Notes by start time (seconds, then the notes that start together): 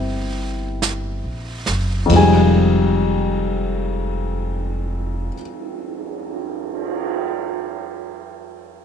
Already playing: G1 A#3 C4 E4 G4 E5 G5
0.82 brush sweep, snare, hi-hat pedal
1.24 A#1
1.66 F#1, snare
2.06 F2 F3, ride
2.10 F1 G#3, kick
2.15 G3 D#4 G#5
2.98 cymbal swell